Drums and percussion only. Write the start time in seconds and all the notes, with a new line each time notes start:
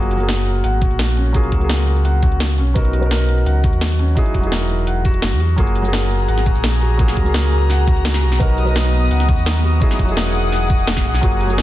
0.02 closed hi-hat
0.11 closed hi-hat
0.20 closed hi-hat
0.29 snare, closed hi-hat
0.46 closed hi-hat
0.55 closed hi-hat
0.64 closed hi-hat
0.82 kick, closed hi-hat
0.91 closed hi-hat
0.99 snare, closed hi-hat
1.17 closed hi-hat
1.34 kick, closed hi-hat
1.44 closed hi-hat
1.52 kick, closed hi-hat
1.61 closed hi-hat
1.69 snare, closed hi-hat
1.87 closed hi-hat
1.96 closed hi-hat
2.05 closed hi-hat
2.22 kick, closed hi-hat
2.32 closed hi-hat
2.40 snare, closed hi-hat
2.58 closed hi-hat
2.76 kick, closed hi-hat
2.85 closed hi-hat
2.93 closed hi-hat
3.03 closed hi-hat
3.11 snare, closed hi-hat
3.29 closed hi-hat
3.38 closed hi-hat
3.46 closed hi-hat
3.64 kick, closed hi-hat
3.73 closed hi-hat
3.81 snare, closed hi-hat
3.99 closed hi-hat
4.17 kick, closed hi-hat
4.26 closed hi-hat
4.34 kick, closed hi-hat
4.43 closed hi-hat
4.52 snare, closed hi-hat
4.69 closed hi-hat
4.79 closed hi-hat
4.87 closed hi-hat
5.05 kick, closed hi-hat
5.14 closed hi-hat
5.22 snare, closed hi-hat
5.40 closed hi-hat
5.58 kick, closed hi-hat, shaker
5.67 closed hi-hat, shaker
5.75 closed hi-hat
5.85 closed hi-hat, shaker
5.93 snare, closed hi-hat
6.11 closed hi-hat, shaker
6.20 closed hi-hat
6.28 closed hi-hat, shaker
6.38 snare
6.46 kick, closed hi-hat, shaker
6.55 closed hi-hat, shaker
6.64 snare, closed hi-hat, shaker
6.81 closed hi-hat
6.99 kick, closed hi-hat, shaker
7.08 snare, closed hi-hat, shaker
7.17 kick, closed hi-hat
7.26 closed hi-hat, shaker
7.34 snare, closed hi-hat
7.52 closed hi-hat, shaker
7.61 closed hi-hat
7.70 snare, closed hi-hat, shaker
7.87 kick, closed hi-hat, shaker
7.97 closed hi-hat, shaker
8.05 snare, closed hi-hat, shaker
8.14 snare
8.23 closed hi-hat
8.32 snare
8.40 kick, closed hi-hat, shaker
8.50 closed hi-hat, shaker
8.58 closed hi-hat
8.67 closed hi-hat, shaker
8.76 snare, closed hi-hat
8.93 closed hi-hat, shaker
9.02 closed hi-hat
9.11 closed hi-hat, shaker
9.20 snare
9.29 kick, closed hi-hat, shaker
9.38 closed hi-hat, shaker
9.46 snare, closed hi-hat, shaker
9.64 closed hi-hat
9.82 kick, closed hi-hat, shaker
9.91 snare, closed hi-hat, shaker
9.99 kick, closed hi-hat
10.08 closed hi-hat, shaker
10.17 snare, closed hi-hat
10.35 closed hi-hat, shaker
10.44 closed hi-hat
10.52 snare, closed hi-hat, shaker
10.70 kick, closed hi-hat, shaker
10.79 closed hi-hat, shaker
10.87 snare, closed hi-hat, shaker
10.97 kick, snare
11.05 closed hi-hat
11.14 snare
11.23 kick, closed hi-hat, shaker
11.32 closed hi-hat, shaker
11.41 closed hi-hat
11.50 closed hi-hat, shaker
11.58 snare, closed hi-hat